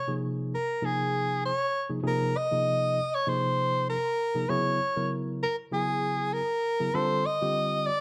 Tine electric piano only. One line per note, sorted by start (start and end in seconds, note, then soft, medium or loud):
0.08 0.55 C3 medium
0.08 0.55 F3 medium
0.08 0.55 A#3 medium
0.08 0.55 D#4 medium
0.08 0.55 G#4 medium
0.82 1.50 C3 medium
0.82 1.51 F3 medium
0.82 1.51 A#3 medium
0.82 1.51 D#4 medium
0.82 1.51 G#4 medium
1.89 1.99 C3 medium
1.89 1.99 F3 medium
1.89 1.99 A#3 medium
1.89 1.99 D#4 medium
1.89 1.99 G#4 medium
2.03 2.33 C3 medium
2.03 2.33 F3 medium
2.03 2.33 A#3 medium
2.03 2.33 D#4 medium
2.03 2.33 G#4 medium
2.51 2.99 C3 medium
2.51 2.99 F3 medium
2.51 2.99 A#3 medium
2.51 2.99 D#4 medium
2.51 2.99 G#4 medium
3.27 3.95 C3 medium
3.27 3.95 F3 medium
3.27 3.95 A#3 medium
3.27 3.95 D#4 medium
3.27 3.95 G#4 medium
4.34 4.44 C3 medium
4.34 4.44 F3 medium
4.34 4.44 A#3 medium
4.34 4.44 D#4 medium
4.34 4.44 G#4 medium
4.49 4.79 C#3 medium
4.49 4.78 F#3 medium
4.49 4.79 B3 medium
4.49 4.79 E4 medium
4.49 4.79 G#4 medium
4.97 5.44 C#3 medium
4.97 5.44 F#3 medium
4.97 5.44 B3 medium
4.97 5.44 E4 medium
4.97 5.44 A#4 medium
5.72 6.40 C#3 medium
5.72 6.40 F#3 medium
5.72 6.40 B3 medium
5.72 6.40 E4 medium
5.72 6.40 G#4 medium
6.80 6.89 C#3 medium
6.80 6.89 F#3 medium
6.80 6.89 B3 medium
6.80 6.89 E4 medium
6.80 6.89 G#4 medium
6.94 7.23 D3 medium
6.94 7.23 G3 medium
6.94 7.23 C4 medium
6.94 7.23 F4 medium
6.94 7.24 A4 medium
7.41 7.89 D3 medium
7.41 7.89 G3 medium
7.41 7.89 C4 medium
7.41 7.89 F4 medium
7.41 7.89 G4 medium